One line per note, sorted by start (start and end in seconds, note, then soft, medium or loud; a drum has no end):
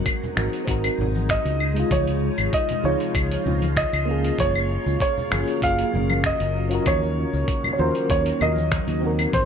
0.00 1.57 F#3 medium
0.00 4.35 G#3 medium
0.00 0.32 C4 medium
0.00 0.33 D#4 medium
0.00 4.35 D#4 medium
0.00 0.34 F#4 medium
0.00 0.35 A#4 loud
0.06 kick medium
0.06 closed hi-hat medium
0.06 cabasa medium
0.06 claves medium
0.22 low conga medium
0.22 cabasa soft
0.35 0.47 G#1 loud
0.35 0.63 C4 medium
0.35 0.64 D#4 medium
0.35 0.65 F#4 medium
0.35 0.65 A#4 medium
0.35 finger snap medium
0.35 high conga medium
0.53 closed hi-hat soft
0.53 cabasa medium
0.65 0.88 G#1 medium
0.65 1.57 C4 medium
0.65 1.58 D#4 medium
0.65 kick loud
0.65 closed hi-hat medium
0.65 cabasa medium
0.69 1.59 F#4 medium
0.69 1.60 A#4 loud
0.84 closed hi-hat soft
0.84 cabasa soft
0.84 claves medium
0.98 1.36 G#1 medium
0.98 low conga medium
1.15 high conga medium
1.15 cabasa medium
1.29 1.94 D#5 medium
1.29 finger snap medium
1.29 kick loud
1.29 closed hi-hat medium
1.29 cabasa medium
1.45 1.83 C#2 medium
1.45 closed hi-hat soft
1.45 cabasa soft
1.60 4.36 F3 medium
1.60 6.83 F4 loud
1.60 claves medium
1.74 2.80 C3 medium
1.74 2.79 G#3 loud
1.74 2.81 D#4 medium
1.74 closed hi-hat soft
1.74 cabasa medium
1.80 2.82 F4 loud
1.91 2.29 C#2 loud
1.91 2.56 C#5 medium
1.91 kick loud
1.91 closed hi-hat medium
1.91 high conga medium
1.91 cabasa soft
2.07 closed hi-hat soft
2.07 cabasa soft
2.38 2.48 G#1 medium
2.38 closed hi-hat soft
2.38 cabasa medium
2.38 claves medium
2.53 2.83 D#5 medium
2.53 kick loud
2.53 closed hi-hat medium
2.53 cabasa medium
2.69 closed hi-hat soft
2.69 low conga medium
2.69 cabasa soft
2.83 2.94 C#2 loud
2.83 3.42 C3 medium
2.83 3.42 G#3 medium
2.83 3.43 D#4 medium
2.83 3.43 F4 loud
2.83 3.73 C#5 medium
2.83 high conga medium
3.00 closed hi-hat soft
3.00 cabasa medium
3.15 3.35 C#2 medium
3.15 kick loud
3.15 closed hi-hat medium
3.15 cabasa medium
3.15 claves medium
3.32 closed hi-hat soft
3.32 cabasa soft
3.44 3.83 C#2 medium
3.44 3.61 G#3 medium
3.44 3.62 C4 medium
3.44 3.62 D#4 medium
3.44 3.63 F4 medium
3.44 low conga medium
3.62 closed hi-hat soft
3.62 high conga medium
3.62 cabasa medium
3.77 4.35 D#5 medium
3.77 finger snap medium
3.77 kick loud
3.77 closed hi-hat medium
3.77 cabasa medium
3.93 4.30 C#2 medium
3.93 closed hi-hat soft
3.93 cabasa soft
3.93 claves medium
4.05 5.27 A#3 medium
4.05 5.28 C#4 medium
4.05 5.29 F4 medium
4.11 5.30 G#4 loud
4.25 closed hi-hat soft
4.25 cabasa medium
4.39 4.76 F#1 loud
4.39 9.31 C#3 medium
4.39 6.85 F#3 medium
4.39 6.85 A#4 medium
4.39 5.00 C#5 loud
4.39 kick loud
4.39 closed hi-hat medium
4.39 high conga loud
4.39 cabasa medium
4.55 cabasa soft
4.55 claves medium
4.86 4.96 C#2 medium
4.86 cabasa medium
5.00 5.59 C#5 loud
5.00 kick loud
5.00 closed hi-hat medium
5.00 cabasa medium
5.18 low conga medium
5.18 cabasa soft
5.30 5.42 F#1 loud
5.30 5.58 A#3 medium
5.30 5.59 C#4 medium
5.30 5.59 F4 medium
5.30 5.60 G#4 medium
5.30 finger snap medium
5.30 high conga medium
5.30 claves medium
5.48 closed hi-hat soft
5.48 cabasa medium
5.60 5.83 F#1 medium
5.60 6.66 A#3 medium
5.60 6.67 C#4 medium
5.60 6.68 F4 medium
5.60 6.21 F5 loud
5.60 kick loud
5.60 closed hi-hat medium
5.60 cabasa medium
5.65 6.69 G#4 medium
5.79 closed hi-hat soft
5.79 cabasa soft
5.94 6.31 F#1 medium
5.94 low conga medium
6.10 high conga medium
6.10 cabasa medium
6.10 claves medium
6.24 6.89 D#5 loud
6.24 finger snap medium
6.24 kick loud
6.24 closed hi-hat medium
6.24 cabasa medium
6.40 6.78 F#1 loud
6.40 closed hi-hat soft
6.40 cabasa soft
6.69 7.74 C#4 medium
6.69 7.75 F4 medium
6.69 7.76 F#4 medium
6.69 closed hi-hat soft
6.69 cabasa medium
6.75 7.77 A#4 loud
6.86 7.24 D#2 loud
6.86 9.32 D#3 medium
6.86 9.45 F#3 medium
6.86 9.32 A#3 medium
6.86 7.71 C#5 loud
6.86 kick loud
6.86 closed hi-hat medium
6.86 high conga loud
6.86 cabasa medium
6.86 claves medium
7.02 cabasa soft
7.33 7.43 C#2 medium
7.33 cabasa medium
7.48 kick loud
7.48 closed hi-hat medium
7.48 cabasa medium
7.64 low conga medium
7.64 cabasa soft
7.64 claves medium
7.73 7.79 C#5 medium
7.78 7.89 D#2 loud
7.78 8.37 C#4 medium
7.78 8.37 F4 medium
7.78 8.38 F#4 medium
7.78 8.38 A#4 loud
7.78 8.11 C5 medium
7.78 high conga medium
7.95 closed hi-hat soft
7.95 cabasa medium
8.10 8.30 D#2 medium
8.10 8.42 C#5 medium
8.10 kick loud
8.10 closed hi-hat medium
8.10 cabasa medium
8.26 closed hi-hat soft
8.26 cabasa soft
8.40 8.78 D#2 medium
8.40 8.56 C#4 medium
8.40 8.57 F4 medium
8.40 8.57 F#4 medium
8.40 8.58 A#4 medium
8.40 8.99 D#5 medium
8.40 low conga loud
8.40 claves medium
8.56 high conga medium
8.56 cabasa medium
8.72 finger snap medium
8.72 kick loud
8.72 closed hi-hat medium
8.72 cabasa medium
8.88 9.25 D#2 medium
8.88 closed hi-hat soft
8.88 cabasa soft
9.00 9.45 C4 medium
9.00 9.45 D#4 medium
9.04 9.45 F#4 medium
9.04 9.45 A#4 loud
9.19 closed hi-hat soft
9.19 cabasa medium
9.19 claves medium
9.33 9.45 G#1 loud
9.33 9.45 C5 medium
9.33 kick loud
9.33 closed hi-hat medium
9.33 high conga loud
9.33 cabasa medium